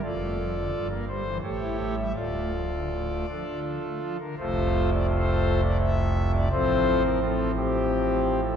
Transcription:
<<
  \new Staff \with { instrumentName = "Pipe organ" } { \time 3/4 \key d \minor \tempo 4 = 84 <f' a' d''>4~ <f' a' d''>16 bes'16 c''8 <g' a' cis''>8. e''16 | <f' a' d''>4. <d' f' a'>4~ <d' f' a'>16 bes'16 | \key f \major <f' a' c''>8. d''16 <f' a' c''>8. d''16 e''8. d''16 | <f' a' c''>8. bes'16 <c' f' a'>8 <c' g'>4~ <c' g'>16 a'16 | }
  \new Staff \with { instrumentName = "Pipe organ" } { \clef bass \time 3/4 \key d \minor << { f,16 a16 f16 d16 g,16 bes16 g16 e16 a,16 e'16 a16 g16 | d,16 a16 f16 d16 a,16 a16 f16 d8 a16 f16 d16 | \key f \major <f, c f a>2. | <a, f c'>2. | } \\ { f,,4 g,,4 a,,4 | d,,4. r4. | <f,, c,>2. | a,,2. | } >> }
>>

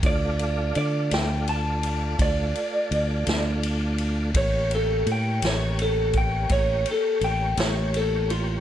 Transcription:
<<
  \new Staff \with { instrumentName = "Clean electric guitar" } { \time 12/8 \key d \minor \tempo 4. = 56 d''4 d''8 g''8 a''4 d''2 r4 | cis''8 a'8 g''8 cis''8 a'8 g''8 cis''8 a'8 g''8 cis''8 a'8 f'8 | }
  \new Staff \with { instrumentName = "Tonewheel organ" } { \time 12/8 \key d \minor <a f' d''>1. | <bes g' cis''>1. | }
  \new Staff \with { instrumentName = "Fingered electric bass" } { \clef bass \time 12/8 \key d \minor d,4 d8 d,4. d,8 r8 d,8 d,4. | a,,4 a,8 a,,4. a,,8 r8 a,,8 a,,4. | }
  \new DrumStaff \with { instrumentName = "Drums" } \drummode { \time 12/8 <bd cymr>8 cymr8 cymr8 <cymr sn>8 cymr8 cymr8 <bd cymr>8 cymr8 cymr8 <cymr sn>8 cymr8 cymr8 | <bd cymr>8 cymr8 cymr8 <cymr sn>8 cymr8 <bd cymr>8 <bd cymr>8 cymr8 cymr8 <cymr sn>8 cymr8 cymr8 | }
>>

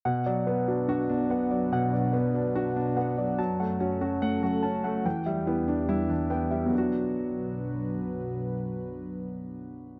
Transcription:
<<
  \new Staff \with { instrumentName = "Synth keys" } { \time 4/4 \key b \minor \tempo 4 = 144 fis''8 d''8 b'8 fis'8 d'8 b8 fis''8 d''8 | fis''8 d''8 b'8 fis'8 d'8 b8 fis''8 d''8 | a''8 fis''8 fis'8 cis'8 a8 fis8 a''8 fis''8 | g''8 e''8 e'8 d'8 g8 e8 g''8 e''8 |
<b d' fis'>1~ | <b d' fis'>1 | }
  \new Staff \with { instrumentName = "Grand piano" } { \time 4/4 \key b \minor b,8 fis8 b8 d'8 fis'8 d'8 b8 fis8 | b,8 fis8 b8 d'8 fis'8 d'8 b8 fis8 | fis8 a8 cis'8 fis'8 fis''8 fis'8 cis'8 a8 | e8 g8 b8 d'8 e'8 d'8 b8 g8 |
<fis b d' fis'>1~ | <fis b d' fis'>1 | }
  \new Staff \with { instrumentName = "Analog synth pad" } { \time 4/4 \key b \minor <b, fis d' b'>1~ | <b, fis d' b'>1 | <fis, fis cis' a'>1 | <e, e d' g'>1 |
<b, fis d' b'>1~ | <b, fis d' b'>1 | }
>>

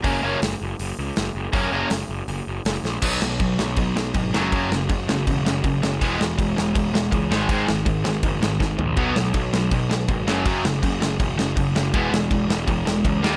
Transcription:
<<
  \new Staff \with { instrumentName = "Overdriven electric guitar" } { \clef bass \time 4/4 \key fis \mixolydian \tempo 4 = 162 <fis, cis fis ais cis'>8 <fis, cis fis ais cis'>8 r2. | <fis, cis fis ais cis'>8 <fis, cis fis ais cis'>8 r2. | <b, fis b>8 <b, fis>8 <b, fis>8 <b, fis>8 <b, fis>8 <b, fis>8 <b, fis>8 <fis, cis fis>8 | <fis, cis fis>8 <fis, cis>8 <fis, cis>8 <fis, cis>8 <fis, cis>8 <fis, cis>8 <fis, cis>8 <fis, cis>8 |
<e gis b>8 <e gis>8 <e gis>8 <e gis>8 <e gis>8 <e gis>8 <e gis>8 <gis, dis gis>8 | <gis, dis gis>8 <gis, dis>8 <gis, dis>8 <gis, dis>8 <gis, dis>8 <gis, dis>8 <gis, dis>8 <gis, dis>8 | <b, fis b>8 <b, fis>8 <b, fis>8 <b, fis>8 <b, fis>8 <b, fis>8 <b, fis>8 <fis, cis fis>8 | <fis, cis fis>8 <fis, cis>8 <fis, cis>8 <fis, cis>8 <fis, cis>8 <fis, cis>8 <fis, cis>8 <fis, cis>8 |
<e gis b>8 <e gis>8 <e gis>8 <e gis>8 <e gis>8 <e gis>8 <e gis>8 <dis g ais>8 | }
  \new Staff \with { instrumentName = "Overdriven electric guitar" } { \clef bass \time 4/4 \key fis \mixolydian <fis, cis fis ais cis'>8 <fis, cis fis ais cis'>8 r2. | <fis, cis fis ais cis'>8 <fis, cis fis ais cis'>8 r2. | <b, fis b>8 <b, fis>8 <b, fis>8 <b, fis>8 <b, fis>8 <b, fis>8 <b, fis>8 <fis, cis fis>8 | <fis, cis fis>8 <fis, cis>8 <fis, cis>8 <fis, cis>8 <fis, cis>8 <fis, cis>8 <fis, cis>8 <fis, cis>8 |
<e gis b>8 <e gis>8 <e gis>8 <e gis>8 <e gis>8 <e gis>8 <e gis>8 <gis, dis gis>8 | <gis, dis gis>8 <gis, dis>8 <gis, dis>8 <gis, dis>8 <gis, dis>8 <gis, dis>8 <gis, dis>8 <gis, dis>8 | <b, fis b>8 <b, fis>8 <b, fis>8 <b, fis>8 <b, fis>8 <b, fis>8 <b, fis>8 <fis, cis fis>8 | <fis, cis fis>8 <fis, cis>8 <fis, cis>8 <fis, cis>8 <fis, cis>8 <fis, cis>8 <fis, cis>8 <fis, cis>8 |
<e gis b>8 <e gis>8 <e gis>8 <e gis>8 <e gis>8 <e gis>8 <e gis>8 <dis g ais>8 | }
  \new Staff \with { instrumentName = "Picked electric bass" } { \clef bass \time 4/4 \key fis \mixolydian fis,,8 fis,,8 fis,,8 fis,,8 fis,,8 cis,8 fis,,8 fis,,8 | fis,,8 fis,,8 fis,,8 fis,,8 fis,,8 fis,,8 fis,,8 ais,,8 | b,,8 b,,8 b,,8 b,,8 b,,4 gis,,8 fis,,8 | fis,8 fis,,8 fis,,8 fis,,8 e,,8 fis,,8 fis,,8 fis,,8 |
e,,8 e,,8 e,,8 e,,8 e,,4 cis,8 gis,,8 | gis,8 gis,,8 gis,,8 gis,,8 fis,,8 gis,,8 gis,,8 ais,,8 | b,,8 b,,8 b,,8 b,,8 b,,4 gis,,8 fis,,8 | fis,8 fis,,8 fis,,8 fis,,8 e,,8 fis,,8 fis,,8 fis,,8 |
e,,8 e,,8 e,,8 e,,8 e,,4 cis,8 dis,8 | }
  \new DrumStaff \with { instrumentName = "Drums" } \drummode { \time 4/4 <hho bd>4 <hho sn>4 hho4 <hho sn>4 | <hho bd>4 <hho sn>4 hho4 <hho sn>8 sn8 | <cymc bd>8 sn8 <cymc bd>8 sn8 <cymc bd>8 sn8 <cymc bd>8 sn8 | <cymc bd>8 sn8 <cymc bd>8 sn8 <cymc bd>8 sn8 <cymc bd>8 sn8 |
<cymc bd>8 sn8 <cymc bd>8 sn8 <cymc bd>8 sn8 <cymc bd>8 sn8 | <cymc bd>8 sn8 <cymc bd>8 sn8 <cymc bd>8 sn8 <bd sn>8 tomfh8 | <cymc bd>8 sn8 <cymc bd>8 sn8 <cymc bd>8 sn8 <cymc bd>8 sn8 | <cymc bd>8 sn8 <cymc bd>8 sn8 <cymc bd>8 sn8 <cymc bd>8 sn8 |
<cymc bd>8 sn8 <cymc bd>8 sn8 <cymc bd>8 sn8 <cymc bd>8 sn8 | }
>>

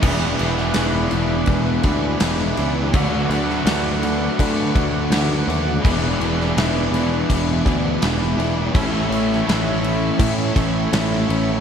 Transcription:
<<
  \new Staff \with { instrumentName = "Accordion" } { \time 4/4 \key e \mixolydian \tempo 4 = 83 << { <b' d'''>1 | <b' d'''>1~ | <b' d'''>1 | <cis'' e'''>1 | } \\ { e''1 | fis''1 | e''1~ | e''1 | } >> }
  \new Staff \with { instrumentName = "Overdriven electric guitar" } { \time 4/4 \key e \mixolydian <e b d' gis'>8 <b d' gis'>8 <e b d' gis'>4. <b d' gis'>8 <e b d' gis'>8 <b d' gis'>8 | <d fis a d' fis'>8 <a d' fis'>8 <fis a d' fis'>4. <a d' fis'>8 <fis a d' fis'>8 <a d' fis'>8 | <e b d' gis'>8 <b d' gis'>8 <e b d' gis'>4. <b d' gis'>8 <e b d' gis'>8 <b d' gis'>8 | <a, e a cis' e' a'>8 <a cis' e' a'>8 <a cis' e' a'>4. <a cis' e' a'>8 <a cis' e' a'>8 <a cis' e' a'>8 | }
  \new Staff \with { instrumentName = "Overdriven electric guitar" } { \time 4/4 \key e \mixolydian <e b d' gis'>1 | <d fis a d' fis'>1 | <e b d' gis'>1 | <a, e a cis' e' a'>1 | }
  \new Staff \with { instrumentName = "Overdriven electric guitar" } { \time 4/4 \key e \mixolydian <e, b, e gis d' e'>8 <e gis d' e'>8 <e gis d' e'>8 <e gis d' e'>8 <e, b, e gis d' e'>8 <e gis d' e'>8 <e gis d' e'>8 <e gis d' e'>8 | <d a d' fis'>8 <a d' fis'>8 <d a d' fis'>8 <a d' fis'>8 <d a d' fis'>8 <a d' fis'>8 <d a d' fis'>8 <a d' fis'>8 | <e, b, e gis d' e'>8 <e gis d' e'>8 <e gis d' e'>8 <e gis d' e'>8 <e, b, e gis d' e'>8 <e gis d' e'>8 <e gis d' e'>8 <e gis d' e'>8 | <a, e a cis' e'>8 <a cis' e'>8 <e a cis' e'>8 <a cis' e'>8 <a, e a cis' e'>8 <a cis' e'>8 <e a cis' e'>8 <a cis' e'>8 | }
  \new Staff \with { instrumentName = "Picked electric bass" } { \clef bass \time 4/4 \key e \mixolydian e,,8 e,,8 e,,8 e,,8 e,,8 d,8 e,,8 cis,8 | d,8 d,8 d,4 d8 d,8 d,8 dis,8 | e,,8 e,,8 e,,8 e,,8 e,,8 d,8 e,,8 e,,8 | a,,8 a,,8 a,,4 a,8 a,,8 a,,8 a,,8 | }
  \new DrumStaff \with { instrumentName = "Drums" } \drummode { \time 4/4 <cymc bd>8 cymc16 sn16 <cymc sn>8 cymc8 <cymc bd>8 <cymc bd>8 <cymc sn>16 sn16 cymc8 | <cymc bd>8 cymc16 sn16 <cymc sn>8 cymc8 <cymc bd>8 <cymc bd>8 <cymc sn>16 sn16 cymc8 | <cymc bd>8 cymc16 sn16 <cymc sn>8 cymc8 <cymc bd>8 <cymc bd>8 <cymc sn>16 sn16 cymc8 | <cymc bd>8 cymc16 sn16 <cymc sn>8 cymc8 <cymc bd>8 <cymc bd>8 <cymc sn>16 sn16 cymc8 | }
>>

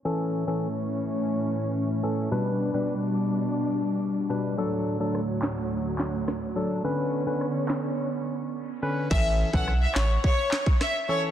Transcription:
<<
  \new Staff \with { instrumentName = "Violin section" } { \time 4/4 \key a \mixolydian \tempo 4 = 106 r1 | r1 | r1 | r1 |
e''16 r8 fis''16 r16 e''16 cis''16 r16 cis''8. r16 e''16 r16 cis''16 r16 | }
  \new Staff \with { instrumentName = "Synth stab" } { \time 4/4 \key a \mixolydian <e cis' a'>8. <e cis' a'>16 r2 r8 <e cis' a'>8 | <b, g d' b'>8. <b, g d' b'>16 r2 r8 <b, g d' b'>8 | <fis d' a'>8. <fis d' a'>16 r2 r8 <fis d' a'>8 | <d cis' b'>8. <d cis' b'>16 r2 r8 <d cis' b'>8 |
<e cis' a'>8. <e cis' a'>16 r2 r8 <e cis' a'>8 | }
  \new Staff \with { instrumentName = "String section" } { \clef bass \time 4/4 \key a \mixolydian <a, e cis'>1 | <b, g d'>1 | <d, a, fis>1 | <d b cis'>1 |
r1 | }
  \new Staff \with { instrumentName = "Analog synth bass" } { \clef bass \time 4/4 \key a \mixolydian r1 | r1 | r1 | r1 |
a,,8. b,,8. a,,8 r2 | }
  \new DrumStaff \with { instrumentName = "Drums" } \drummode { \time 4/4 r4 r4 r4 r4 | r4 r4 r4 r4 | r4 ss8 <hc sn>8 r8 <hc sn>8 <ss sn>4 | r4 ss8 <hc sn>8 r4 r4 |
<cymc bd>8. bd16 ss8 <hc sn>8 bd8 <hc sn>16 bd16 <ss sn>4 | }
>>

